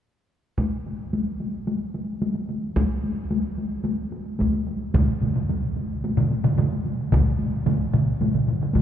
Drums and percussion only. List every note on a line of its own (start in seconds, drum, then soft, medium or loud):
0.58 taiko medium
0.58 taiko high soft
0.72 taiko high soft
0.86 taiko high soft
1.00 taiko high soft
1.13 taiko high medium
1.27 taiko high soft
1.40 taiko high soft
1.54 taiko high soft
1.67 taiko high medium
1.81 taiko high soft
1.94 taiko high soft
2.08 taiko high soft
2.22 taiko high medium
2.35 taiko high soft
2.49 taiko high soft
2.63 taiko high soft
2.76 taiko medium
2.76 taiko high medium
2.90 taiko high soft
3.04 taiko high soft
3.17 taiko high soft
3.31 taiko high medium
3.44 taiko high soft
3.58 taiko high soft
3.71 taiko high soft
3.85 taiko high medium
4.12 taiko high soft
4.26 taiko high soft
4.39 taiko medium
4.39 taiko high medium
4.52 taiko high soft
4.67 taiko high soft
4.80 taiko high soft
4.94 taiko medium
4.94 taiko low-mid medium
4.94 taiko mid medium
4.94 taiko high medium
5.07 taiko high soft
5.21 taiko low-mid medium
5.21 taiko mid medium
5.21 taiko high soft
5.35 taiko low-mid medium
5.35 taiko mid medium
5.35 taiko high soft
5.49 taiko high medium
5.63 taiko high soft
5.77 taiko high soft
5.90 taiko high soft
6.04 taiko high medium
6.17 taiko low-mid medium
6.17 taiko mid medium
6.17 taiko high soft
6.31 taiko high soft
6.44 taiko low-mid medium
6.44 taiko mid medium
6.44 taiko high soft
6.58 taiko low-mid medium
6.58 taiko mid medium
6.58 taiko high medium
6.72 taiko high soft
6.86 taiko high soft
7.00 taiko high soft
7.12 taiko medium
7.12 taiko low-mid medium
7.12 taiko mid medium
7.12 taiko high medium
7.26 taiko high soft
7.39 taiko high soft
7.53 taiko high soft
7.66 taiko low-mid medium
7.66 taiko mid medium
7.66 taiko high medium
7.80 taiko high soft
7.93 taiko low-mid medium
7.93 taiko mid medium
7.93 taiko high soft
8.07 taiko high soft
8.21 taiko low-mid medium
8.21 taiko mid medium
8.21 taiko high medium
8.34 taiko low-mid medium
8.34 taiko mid medium
8.34 taiko high soft
8.47 taiko low-mid medium
8.47 taiko mid medium
8.47 taiko high soft
8.61 taiko low-mid medium
8.61 taiko mid medium
8.61 taiko high soft
8.74 taiko medium
8.74 taiko low-mid medium
8.74 taiko mid medium
8.74 taiko high medium